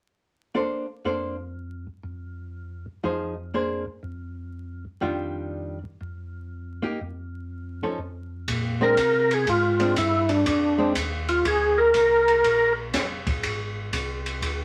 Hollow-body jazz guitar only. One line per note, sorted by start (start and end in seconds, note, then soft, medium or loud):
0.55 0.85 A#3 soft
0.55 0.85 D4 medium
0.55 0.85 A4 medium
0.55 0.86 C5 medium
1.05 1.35 A#3 soft
1.05 1.35 D4 soft
1.05 1.35 A4 soft
1.05 1.35 C5 medium
3.04 3.33 F3 soft
3.04 3.33 D#4 soft
3.04 3.34 G#4 soft
3.04 3.34 C5 soft
3.54 3.83 A#3 soft
3.54 3.83 D4 soft
3.54 3.84 G#4 medium
3.54 3.84 C5 medium
5.01 5.78 D#3 medium
5.01 5.78 G3 soft
5.01 5.78 D4 medium
5.01 5.78 F4 medium
6.82 6.98 A#3 medium
6.82 6.99 D#4 medium
6.82 6.99 G4 medium
7.83 7.98 F3 soft
7.83 7.98 C#4 soft
7.83 7.98 D#4 soft
7.83 7.98 A4 medium
8.81 8.96 G#3 medium
8.81 8.97 C4 medium
8.81 8.97 D4 medium
9.80 9.95 G#3 medium
9.80 9.95 C4 medium
9.80 9.95 D4 medium
10.78 10.94 G#3 medium
10.78 10.94 C4 medium
10.78 10.94 D4 medium